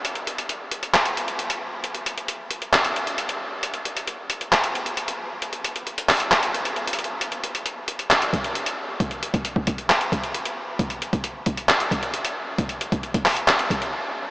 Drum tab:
HH |x-x-x-x-x---x-x-x-x-x-x-x-x-----|x-x-x-x-x---x-x-x-x-x-x-x-x-----|x-x-x-x-x---x-x-x-x-x-x-x-x-----|x-x-x-x-x-x-o-x-x-x-x-x-x-xxxx--|
CP |----------------x---------------|----------------x---------------|----------------x---------------|------------x---x---------------|
BD |--------------------------------|--------------------------------|--------------------------------|--------------------------------|

HH |x-x-x-x-x---x-x-x-x-x-x-x-x-----|x-x-x-x-x---x-x-x-x-x-x-x-x-----|x-x-x-x-x---x-x-x-x-x-x-x-x-----|x-x-x-x-x-x-o-x-x-x-x-x---------|
CP |----------------x---------------|----------------x---------------|----------------x---------------|------------x---x---------------|
BD |--------------------o-----------|o-----o---o-o-------o-----------|o-----o-----o-------o-----------|o-----o---o---------o-----------|